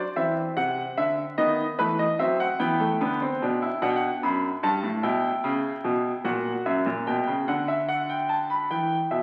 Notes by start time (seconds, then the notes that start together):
Already playing: D5
0.16 E3 C4 E5
0.57 C3 F#5
0.97 D3 E5
1.38 D#3 B3 D#5
1.79 E3 A3 B4
1.99 D#5
2.19 F#3 C4 E5
2.40 F#5
2.59 E3 B3 G5
2.80 A3
3.01 D3 B3
3.22 C4
3.42 B2 D4
3.62 E4
3.82 B2 D4 F#5
3.89 G5
3.96 F#5
4.23 F#2 B5
4.63 G2 A5
4.83 A2
5.03 B2 E4 G5
5.44 C#3
5.84 B2
6.24 A#2 F#4 F#5
6.66 F#2 E5
6.86 A#2
7.07 B2 G5
7.27 C#3
7.48 D3 F#5
7.68 E5
7.88 F#5
8.09 G5
8.29 A5
8.50 B5
8.70 E3 G5
9.11 B2 E5